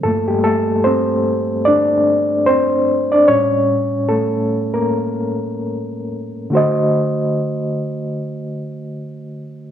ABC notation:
X:1
M:4/4
L:1/16
Q:"Swing 16ths" 1/4=74
K:Aphr
V:1 name="Reed electric piano"
[A,A] [G,G] [A,A]2 [Cc]4 [Dd]4 [Cc]3 [Dd] | ^c4 [A,A]3 [B,B]6- [B,B] z2 | [D,A,^Fc_e]16 |]
V:2 name="Reed electric piano" clef=bass
[G,,F,B,]2 z12 z2 | [A,,G,^C]16 | z16 |]